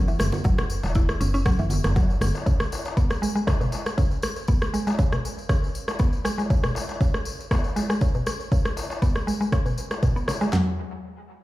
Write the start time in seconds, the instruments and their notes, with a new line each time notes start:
Already playing: fm bass F#1
0.08 synth arpeggio sound E3, tambourine
0.19 fm bass F#1, cross-stick, tambourine, high conga
0.32 tambourine, high conga
0.44 fm bass F#1, synth arpeggio sound F#3, kick, tambourine, low conga
0.58 cross-stick, tambourine, low conga
0.70 tambourine
0.83 fm bass E1, tambourine, darbuka tek
0.95 synth arpeggio sound E4, kick, tambourine, high conga
1.09 cross-stick, tambourine
1.21 fm bass F#1, synth arpeggio sound C#4, tambourine, high conga
1.34 synth arpeggio sound C#4, tambourine
1.46 synth arpeggio sound F#3, kick, cross-stick, tambourine
1.59 fm bass F#1, synth arpeggio sound E3, tambourine
1.70 tambourine, high conga
1.84 fm bass F#1, cross-stick, tambourine, darbuka ka, high conga
1.96 synth arpeggio sound F#3, kick, tambourine, darbuka tek
2.10 tambourine
2.21 fm bass F#1, cross-stick, tambourine, high conga
2.35 tambourine, darbuka ka
2.46 synth arpeggio sound C#3, kick, tambourine
2.60 cross-stick, tambourine
2.72 tambourine, darbuka ka
2.85 tambourine, darbuka tek
2.97 synth arpeggio sound B3, kick, tambourine
3.10 cross-stick, tambourine
3.22 synth arpeggio sound G#3, tambourine
3.35 synth arpeggio sound G#3, tambourine
3.47 synth arpeggio sound C#3, kick, cross-stick, tambourine, darbuka tek
3.61 synth arpeggio sound B2, tambourine
3.72 tambourine, darbuka ka, darbuka tek
3.86 cross-stick, tambourine
3.98 synth arpeggio sound C#3, kick, tambourine
4.11 tambourine
4.22 cross-stick, tambourine
4.36 tambourine
4.48 synth arpeggio sound B3, kick, tambourine
4.62 cross-stick, tambourine
4.74 synth arpeggio sound G#3, tambourine
4.87 synth arpeggio sound G#3, tambourine, darbuka tek
4.99 synth arpeggio sound C#3, kick, tambourine
5.12 synth arpeggio sound B2, cross-stick, tambourine
5.25 tambourine
5.38 tambourine
5.49 synth arpeggio sound C#3, kick, cross-stick, tambourine
5.64 tambourine
5.75 tambourine
5.88 cross-stick, tambourine, darbuka ka
5.99 synth arpeggio sound B3, kick, tambourine
6.13 tambourine
6.25 synth arpeggio sound G#3, cross-stick, tambourine
6.38 synth arpeggio sound G#3, tambourine, darbuka ka
6.50 synth arpeggio sound C#3, kick, tambourine
6.64 synth arpeggio sound B2, cross-stick, tambourine
6.75 tambourine, darbuka ka
6.89 tambourine, darbuka tek
7.01 synth arpeggio sound C#3, kick, tambourine
7.14 cross-stick, tambourine
7.25 tambourine
7.40 tambourine
7.51 synth arpeggio sound B3, kick, cross-stick, tambourine, darbuka tek
7.64 tambourine
7.76 synth arpeggio sound G#3, tambourine, darbuka ka, darbuka tek
7.90 synth arpeggio sound G#3, cross-stick, tambourine
8.01 synth arpeggio sound C#3, kick, tambourine
8.15 synth arpeggio sound B2, tambourine
8.26 cross-stick, tambourine
8.40 tambourine
8.52 synth arpeggio sound C#3, kick, tambourine
8.65 cross-stick, tambourine
8.77 tambourine, darbuka ka
8.90 tambourine, darbuka tek
9.02 synth arpeggio sound B3, kick, tambourine
9.16 cross-stick, tambourine
9.27 synth arpeggio sound G#3, tambourine
9.41 synth arpeggio sound G#3, tambourine
9.52 synth arpeggio sound C#3, kick, cross-stick, tambourine
9.66 synth arpeggio sound B2, tambourine
9.78 tambourine
9.91 cross-stick, tambourine, darbuka ka
10.03 synth arpeggio sound B2, kick, tambourine, darbuka tek
10.16 synth arpeggio sound B3, tambourine
10.28 synth arpeggio sound C#3, cross-stick, tambourine, darbuka tek
10.41 synth arpeggio sound G#3, tambourine, darbuka ka
10.53 synth arpeggio sound F#3, snare, floor tom